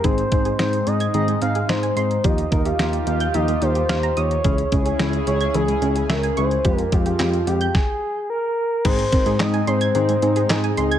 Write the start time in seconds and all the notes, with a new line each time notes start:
Already playing: C4
0.04 G#2 D#3 G#3 C4 D#4 G#4 C5, kick, closed hi-hat
0.18 closed hi-hat
0.32 G#2 C4 D#4 G#4, kick, closed hi-hat
0.45 G#4, closed hi-hat
0.59 G#2 C4 D#4 G#4 C5, snare, closed hi-hat
0.73 closed hi-hat
0.87 G#2 C4 D#4 G#4 D#5, closed hi-hat
1.00 G#6, closed hi-hat
1.14 G#2 D#3 C4 D#4 G#4 D#5, closed hi-hat
1.28 G#3, closed hi-hat
1.42 G#2 C4 D#4 G#4 F5, closed hi-hat
1.55 G#4, closed hi-hat
1.69 G#2 C4 D#4 G#4 C5 D#5, snare, closed hi-hat
1.83 G#5, closed hi-hat
1.97 G#2 C4 D#4 G#4 C5 C6, closed hi-hat
2.11 closed hi-hat
2.24 D#2 D#3 F3 D#4 F4 G4 D#5, kick, closed hi-hat
2.38 closed hi-hat
2.52 D#2 D#4 F4 A#4, kick, closed hi-hat
2.65 G4 F5, closed hi-hat
2.79 D#2 D#4 F4 G4, snare, closed hi-hat
2.93 closed hi-hat
3.07 D#2 D#4 F4 G4 F5, closed hi-hat
3.20 G6, closed hi-hat
3.34 D#2 F3 D#4 F4 G4 D#5, closed hi-hat
3.48 A#3, closed hi-hat
3.62 D#2 D#4 F4 G4 C5, closed hi-hat
3.75 G4, closed hi-hat
3.89 D#2 D#4 F4 G4 C5 F5, snare, closed hi-hat
4.03 A#5, closed hi-hat
4.17 D#2 D#4 F4 G4 C#5 D#6, closed hi-hat
4.31 closed hi-hat
4.44 C#2 C#3 E3 C#4 E4 G#4, kick, closed hi-hat
4.58 closed hi-hat
4.72 C#2 C#4 E4 G#4, kick, closed hi-hat
4.86 G#4, closed hi-hat
4.99 C#2 C#4 E4 G#4, snare, closed hi-hat
5.13 closed hi-hat
5.27 C#2 C#4 E4 G#4 C#5, closed hi-hat
5.41 G#6, closed hi-hat
5.54 C#2 E3 C#4 E4 G#4, closed hi-hat
5.68 G#3, closed hi-hat
5.82 C#2 C#4 E4 G#4, closed hi-hat
5.96 G#4, closed hi-hat
6.10 C#2 C#4 E4 G#4 A#4 E5, snare, closed hi-hat
6.23 G#5, closed hi-hat
6.37 C#2 C#4 E4 G#4 C5 C#6, closed hi-hat
6.51 closed hi-hat
6.65 F2 F3 G#3 C4 F4 G4, kick, closed hi-hat
6.77 A#4, closed hi-hat
6.92 F2 G#3 C4 F4 G4, kick, closed hi-hat
7.06 G4, closed hi-hat
7.20 F2 G#3 F4 G4, snare, clap, closed hi-hat
7.34 closed hi-hat
7.47 F2 G#3 F4 G4, closed hi-hat
7.61 G6, closed hi-hat
7.75 G#4, kick, snare
8.30 A#4
8.85 G#2 D#3 G#3 C4 D#4 G#4 C5, kick, closed hi-hat, crash
8.99 G#3, closed hi-hat
9.12 C4 D#4 A#4, kick, closed hi-hat
9.26 G#2 G#4, closed hi-hat
9.40 G#2 C4 D#4 G#4 D#5, snare, clap, closed hi-hat
9.54 G#5, closed hi-hat
9.67 G#2 C4 D#4 G#4 C5 C6, closed hi-hat
9.81 G#6, closed hi-hat
9.95 G#2 D#3 C4 D#4 G#4, closed hi-hat
10.09 G#3, closed hi-hat
10.22 G#2 C4 D#4 G#4, closed hi-hat
10.36 G#4, closed hi-hat
10.50 G#2 C4 D#4 G#4 D#5, snare, clap, closed hi-hat
10.64 G#5, closed hi-hat
10.77 C#2 C4 D#4 G#4 C6, closed hi-hat
10.91 G#6, closed hi-hat